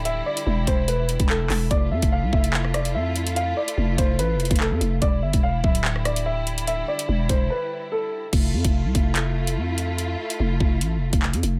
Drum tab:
CC |--------------------------------|--------------------------------|--------------------------------|--------------------------------|
HH |x-----x-----x---x---x-x-----o---|x-----x-------x-----x-x-----x-x-|x-----x-----x---x---xxxx----x---|x-----x-------x-----x-x-----x-x-|
CP |------------------------x---x---|----------------x---------------|------------------------x-------|----------------x---------------|
SD |--------------------------------|------------------r-r-----------|--------------------------------|------------------r-r-----------|
BD |------------o---------o---------|o-----o-----o-------------------|------------o---------o---------|o-----o-----o-------------------|

CC |--------------------------------|x-------------------------------|--------------------------------|
HH |x-----x-----x-------------------|x-----x-----x---x-----x-----x---|x-----x---------x-----x---x-x---|
CP |--------------------------------|----------------x---------------|------------------------x-------|
SD |--------------------------------|--------------------------------|--------------------------------|
BD |------------o-------------------|o-----o-----o-------------------|------------o---------o---------|